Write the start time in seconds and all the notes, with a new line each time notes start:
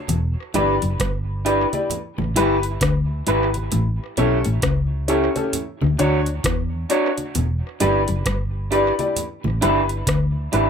0.08 E1 E2, closed hi-hat, low conga
0.54 G1 G2 D4 E4 G4 B4 D5, closed hi-hat, low conga
0.82 F#1 F#2, closed hi-hat
1.00 G1 G2, kick, cross-stick, closed hi-hat, high conga
1.45 D4 E4 G4 B4 D5, closed hi-hat
1.73 E4 G4 D5, closed hi-hat, high conga
1.90 closed hi-hat, low conga
2.18 A1 A2, high conga
2.36 G1 G2 E4 G4 B4, closed hi-hat
2.63 closed hi-hat
2.81 D2 D3, kick, cross-stick, closed hi-hat
3.27 G#1 G#2 E4 G4 B4, closed hi-hat
3.54 G4 B4, closed hi-hat, high conga
3.72 A1 A2, closed hi-hat, low conga
4.17 B1 B2 C#4 E4 G4 A4 C#5, closed hi-hat, low conga
4.45 A1 A2, closed hi-hat
4.62 C#2 C#3, kick, cross-stick, closed hi-hat, high conga
5.08 C#4 E4 G4 A4 C#5, closed hi-hat
5.36 C#4 G4 A4, closed hi-hat, high conga
5.53 closed hi-hat, low conga
5.81 D2 D3, high conga
5.98 D2 D3 D4 F#4 C#5, closed hi-hat
6.26 closed hi-hat
6.44 E2 E3, kick, cross-stick, closed hi-hat
6.89 D4 F#4 C#5, closed hi-hat
7.18 F#4 C#5, closed hi-hat, high conga
7.35 E1 E2, closed hi-hat, low conga
7.80 G1 G2 D4 E4 G4 B4 D5, closed hi-hat, low conga
8.08 F#1 F#2, closed hi-hat
8.26 G1 G2, kick, cross-stick, closed hi-hat, high conga
8.71 D4 E4 G4 B4 D5, closed hi-hat
8.99 E4 G4 D5, closed hi-hat, high conga
9.16 closed hi-hat, low conga
9.44 A1 A2, high conga
9.61 G1 G2 D4 E4 G4 B4, closed hi-hat
9.89 closed hi-hat
10.07 D2 D3, kick, cross-stick, closed hi-hat
10.52 G#1 G#2 D4 E4 G4 B4, closed hi-hat